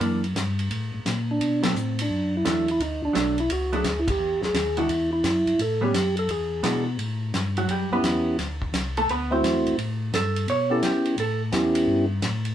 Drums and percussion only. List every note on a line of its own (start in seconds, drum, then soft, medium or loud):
0.01 ride medium
0.24 ride soft
0.36 snare medium
0.36 hi-hat pedal medium
0.36 ride medium
0.59 ride soft
0.71 ride medium
1.06 snare medium
1.06 hi-hat pedal medium
1.06 ride medium
1.41 ride medium
1.63 snare medium
1.63 ride medium
1.76 hi-hat pedal medium
1.99 ride medium
2.45 snare medium
2.45 hi-hat pedal medium
2.45 ride medium
2.68 ride soft
2.80 ride medium
3.15 snare medium
3.15 hi-hat pedal medium
3.15 ride medium
3.38 ride soft
3.50 ride medium
3.73 ride soft
3.84 snare medium
3.84 hi-hat pedal soft
3.84 ride medium
4.08 kick medium
4.08 ride medium
4.43 snare soft
4.54 snare medium
4.54 hi-hat pedal medium
4.54 ride medium
4.77 ride soft
4.89 ride medium
5.24 snare medium
5.24 hi-hat pedal soft
5.24 ride medium
5.47 ride soft
5.59 ride medium
5.94 snare medium
5.94 hi-hat pedal medium
5.94 ride medium
6.17 ride soft
6.29 ride medium
6.64 snare medium
6.64 hi-hat pedal medium
6.64 ride medium
6.99 ride medium
7.34 snare medium
7.34 hi-hat pedal soft
7.34 ride medium
7.57 ride soft
7.69 ride soft
8.04 snare medium
8.04 hi-hat pedal soft
8.04 ride medium
8.39 snare soft
8.39 ride soft
8.62 kick soft
8.74 snare medium
8.74 hi-hat pedal medium
8.74 ride medium
8.97 ride soft
9.09 ride medium
9.44 snare medium
9.44 hi-hat pedal soft
9.44 ride medium
9.67 ride soft
9.79 ride medium
10.14 snare medium
10.14 hi-hat pedal medium
10.14 ride medium
10.36 ride soft
10.48 ride medium
10.83 snare medium
10.83 hi-hat pedal medium
10.83 ride medium
11.05 ride soft
11.18 ride medium
11.52 snare medium
11.52 hi-hat pedal soft
11.52 ride medium
11.75 ride medium
12.22 snare medium
12.22 hi-hat pedal medium
12.22 ride medium
12.45 ride soft